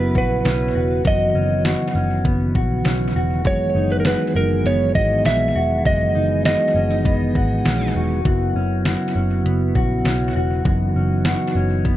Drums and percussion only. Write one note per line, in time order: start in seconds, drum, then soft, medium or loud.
0.15 kick medium
0.45 snare medium
0.45 closed hi-hat medium
1.05 kick loud
1.05 closed hi-hat medium
1.65 snare loud
1.65 closed hi-hat medium
2.25 kick medium
2.25 closed hi-hat medium
2.55 kick medium
2.85 snare medium
2.85 closed hi-hat medium
3.45 kick medium
3.45 closed hi-hat medium
4.05 snare loud
4.05 closed hi-hat medium
4.66 closed hi-hat medium
4.95 kick medium
5.25 snare medium
5.25 closed hi-hat medium
5.85 kick loud
5.85 closed hi-hat medium
6.45 snare loud
6.45 closed hi-hat medium
7.05 kick medium
7.05 closed hi-hat medium
7.35 kick medium
7.65 snare medium
7.65 closed hi-hat medium
8.25 kick loud
8.25 closed hi-hat medium
8.85 snare loud
8.85 closed hi-hat medium
9.46 closed hi-hat medium
9.75 kick medium
10.05 snare medium
10.05 closed hi-hat medium
10.65 kick loud
10.65 closed hi-hat medium
11.25 snare loud
11.25 closed hi-hat medium
11.85 kick medium
11.85 closed hi-hat medium